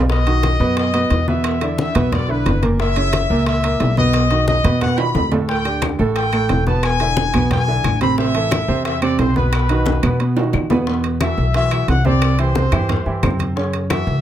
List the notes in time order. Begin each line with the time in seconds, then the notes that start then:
Already playing: B1
0.09 B2 B3 B4 D#5, high bongo
0.27 D#3 D#4 F#4, high bongo, high conga, high timbale
0.43 high bongo, high conga, high timbale
0.60 F#2 B2 B3 B4, high bongo, high conga
0.77 D#5, high bongo, high conga, high timbale
0.93 B2 B3 B4, high conga, high timbale
1.10 E2, high bongo, low bongo, high conga, high timbale
1.27 B2 B3 B4 E5, high bongo, high conga
1.44 high bongo, high conga, high timbale
1.61 D3 D4 E4, high bongo, high conga, high timbale
1.78 E5, high bongo, high conga
1.95 B1 B2 B3 B4, high bongo, high conga, low conga, high timbale
2.12 B2 B3 B4 D5, high bongo, high conga, low conga, high timbale
2.28 D3 D4 E4 B4, high conga
2.46 F#1, high bongo, low bongo, high conga, high timbale, low timbale
2.62 A#2 A#3 A#4, high bongo, high conga, high timbale
2.79 A#2 A#3 A#4 E5, high bongo, high conga
2.96 C#3 C#4 E4, high bongo, high conga, high timbale
3.13 high bongo, high conga, high timbale
3.30 C#2 A#2 A#3 A#4, high bongo, high conga
3.46 E5, high bongo, high conga, high timbale
3.63 A#2 A#3 A#4, high conga, high timbale
3.80 B1, high bongo, low bongo, high conga, high timbale, low timbale
3.97 B2 B3 B4 D#5, high bongo, high conga
4.13 high bongo, high conga, high timbale
4.31 D#3 D#4 F#4, high bongo, high conga, high timbale
4.47 D#5, high bongo, high conga
4.64 B2 B3 B4, high bongo, high conga, low conga, high timbale
4.81 B2 B3 B4 F#5, high bongo, high conga, low conga, high timbale
4.98 D#3 D#4 F#4 B5, high conga, high timbale
5.15 D2, high bongo, low bongo, high conga, low timbale
5.32 A2 A3 A4, high bongo, high conga, low timbale
5.48 A2 A3 A4 G5, high bongo
5.65 D3 D4 G4, high bongo, high conga, high timbale
5.82 high bongo, high conga, high timbale, claves
5.99 A1 A2 A3 A4, high bongo, high conga
6.16 G5, high bongo, high conga, high timbale
6.33 A2 A3 A4, high conga, high timbale, claves
6.49 E1, high bongo, low bongo, high conga, high timbale, low timbale
6.67 B2 B3 B4 A5, high bongo, high conga
6.83 G#5, high bongo, high conga, high timbale, claves
7.00 D3 D4 E4, high bongo, high conga, high timbale
7.17 high bongo, high conga
7.34 B1 B2 B3 B4, high bongo, high conga, low conga, high timbale, claves
7.51 B2 B3 B4 G#5, high bongo, high conga, low conga, high timbale
7.68 D3 D4 E4, high conga
7.84 A1, high bongo, low bongo, high conga, high timbale, claves
8.01 C3 C4 C5 B5, high bongo, high conga, high timbale
8.18 C3 C4 C5 E5, high bongo, high conga
8.34 E3 E4 A4, high bongo, high conga, high timbale
8.51 high bongo, high conga, high timbale, claves
8.68 E2 C3 C4 C5, high bongo, high conga
8.85 E5, high bongo, high conga, high timbale
9.02 C3 C4 C5 D5, high conga, high timbale, claves
9.19 B1 C5, high bongo, low bongo, high conga, high timbale, low timbale
9.36 B2 B3 B4, high bongo, high conga
9.53 high bongo, high conga, high timbale, claves
9.69 D#3 D#4 F#4, high bongo, high conga, high timbale
9.86 high bongo, high conga
10.03 B2 B3 B4, high conga, low conga, high timbale, claves
10.20 B2 B3 B4, high conga, high timbale
10.37 D#3 D#4 F#4, low bongo, high conga, high timbale
10.53 E2, high conga, high timbale, claves
10.70 B2 B3 B4, low bongo, high conga, low timbale
10.87 B2 B3 B4, high bongo, high conga
11.04 high bongo, high conga, high timbale
11.21 E3 E4 F#4 E5, high bongo, high conga, high timbale, claves
11.37 B1, high bongo, high conga
11.54 E3 E4 F#4 E5, high bongo, high conga, high timbale
11.71 E3 E4 F#4, high conga, high timbale, claves
11.88 C2 F#5, high bongo, low bongo, high conga, high timbale, low timbale
12.05 C3 C4 C5 D5, high bongo, high conga
12.22 high bongo, high conga, high timbale, claves
12.38 E3 E4 G4 C5, high bongo, high conga, high timbale
12.55 C3 C4 C5, high bongo, high conga
12.72 G2 E3 E4 G4, high bongo, high conga, low conga, high timbale, claves
12.89 high bongo, high conga, low conga, high timbale
13.06 G2 E3 E4 G4, high conga
13.23 F#2 C3 C4 C5, high bongo, low bongo, high conga, high timbale, low timbale, claves
13.39 high bongo, high conga, high timbale
13.56 C#3 C#4 C#5, high bongo, high conga
13.73 high bongo, high conga, high timbale
13.90 E3 E4 F#4 E5, high bongo, high conga, high timbale, claves
14.07 C#2, high bongo, high conga